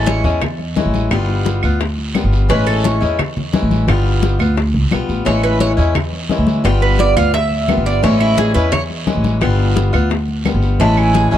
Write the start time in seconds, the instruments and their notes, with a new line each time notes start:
Already playing: upright bass A1, steel-string acoustic guitar E3 G#3 C#4 E4
0.06 cuban tres C#5, high bongo, high conga, short guiro
0.24 upright bass E2, steel-string acoustic guitar G#3 C#4 E4, high bongo, short guiro
0.41 muted steel-string acoustic guitar stroke, high bongo, high conga, low conga, long guiro, claves
0.59 high conga
0.76 steel-string acoustic guitar E3 G#3 C#4 E4, high bongo, low bongo, high conga, short guiro
0.85 upright bass A1
0.94 high bongo, high conga, short guiro
1.11 upright bass G1, steel-string acoustic guitar G3 B3 F4, high bongo, high conga, long guiro, claves
1.29 high bongo, high conga
1.46 high bongo, high conga, short guiro
1.63 upright bass D2, steel-string acoustic guitar B3 F4, high bongo, high conga, short guiro, claves
1.80 muted steel-string acoustic guitar stroke, high bongo, high conga, long guiro
1.98 high conga
2.15 steel-string acoustic guitar G3 B3 F4, high bongo, low bongo, high conga, short guiro, claves
2.24 upright bass G1
2.33 high bongo, high conga, short guiro
2.49 upright bass A1, steel-string acoustic guitar E3 G#3 C#4 E4, cuban tres B4, high bongo, high conga, long guiro
2.67 cuban tres A4, high bongo, high conga, claves
2.84 cuban tres C#5, high bongo, high conga, short guiro
3.00 upright bass E2, steel-string acoustic guitar G#3 C#4 E4, high bongo, short guiro
3.19 muted steel-string acoustic guitar stroke, high bongo, high conga, low conga, long guiro, claves
3.37 high conga, low conga
3.53 steel-string acoustic guitar E3 G#3 C#4 E4, high bongo, low bongo, high conga, short guiro
3.62 upright bass A1
3.71 high bongo, high conga, short guiro
3.88 upright bass G1, steel-string acoustic guitar G3 B3 F4, high bongo, high conga, long guiro, claves
4.06 high bongo, high conga
4.23 high bongo, high conga, short guiro
4.39 upright bass D2, steel-string acoustic guitar B3 F4, high bongo, high conga, short guiro, claves
4.57 muted steel-string acoustic guitar stroke, high bongo, high conga, long guiro
4.74 upright bass C#2, high conga
4.91 upright bass B1, steel-string acoustic guitar G3 B3 F4, high bongo, low bongo, high conga, short guiro, claves
5.09 upright bass A1, high bongo, high conga, short guiro
5.25 upright bass A1, steel-string acoustic guitar E3 G#3 C#4 E4, cuban tres C#5, high bongo, high conga, long guiro
5.43 cuban tres B4, high bongo, high conga, claves
5.60 cuban tres C#5, high bongo, high conga, short guiro
5.77 upright bass E2, steel-string acoustic guitar G#3 C#4 E4, high bongo, short guiro
5.95 muted steel-string acoustic guitar stroke, high bongo, high conga, low conga, long guiro, claves
6.13 high conga
6.29 steel-string acoustic guitar E3 G#3 C#4 E4, high bongo, low bongo, high conga, short guiro
6.38 upright bass D2
6.47 high bongo, high conga, short guiro
6.64 upright bass G1, steel-string acoustic guitar G3 B3 F4, cuban tres G5, high bongo, high conga, long guiro, claves
6.82 cuban tres B4, high bongo, high conga
6.99 cuban tres D5, high bongo, high conga, short guiro
7.16 upright bass D2, steel-string acoustic guitar B3 F4, cuban tres F5, high bongo, high conga, short guiro, claves
7.34 cuban tres E5, muted steel-string acoustic guitar stroke, high bongo, high conga, long guiro
7.51 high conga
7.68 steel-string acoustic guitar G3 B3 F4, high bongo, low bongo, high conga, short guiro, claves
7.77 upright bass G1
7.86 cuban tres D5, high bongo, high conga, short guiro
8.03 upright bass A1, steel-string acoustic guitar E3 G#3 C#4 E4, cuban tres C#5, high bongo, high conga, long guiro
8.20 cuban tres E4, high bongo, high conga, claves
8.38 cuban tres G#4, high bongo, high conga, short guiro
8.54 upright bass E2, steel-string acoustic guitar G#3 C#4 E4, cuban tres B4, high bongo, short guiro
8.72 cuban tres C#5, muted steel-string acoustic guitar stroke, high bongo, high conga, low conga, long guiro, claves
8.90 high conga
9.06 steel-string acoustic guitar E3 G#3 C#4 E4, high bongo, low bongo, high conga, short guiro
9.15 upright bass A1
9.24 high bongo, high conga, short guiro
9.41 upright bass G1, steel-string acoustic guitar G3 B3 F4, high bongo, high conga, long guiro, claves
9.59 high bongo, high conga
9.76 high bongo, high conga, short guiro
9.93 upright bass D2, steel-string acoustic guitar B3 F4, high bongo, high conga, short guiro, claves
10.10 muted steel-string acoustic guitar stroke, high bongo, high conga, long guiro
10.28 high conga
10.45 steel-string acoustic guitar G3 B3 F4, high bongo, low bongo, high conga, short guiro, claves
10.54 upright bass G1
10.62 high bongo, high conga, short guiro
10.80 upright bass A1, steel-string acoustic guitar E3 G#3 C#4 E4, cuban tres E4, ocarina A5, high bongo, high conga, long guiro
10.97 ocarina G#5, high bongo, high conga, claves
11.14 cuban tres G#4, high bongo, high conga, short guiro
11.31 upright bass A1, steel-string acoustic guitar G#3 C#4 E4, ocarina G#5, high bongo, short guiro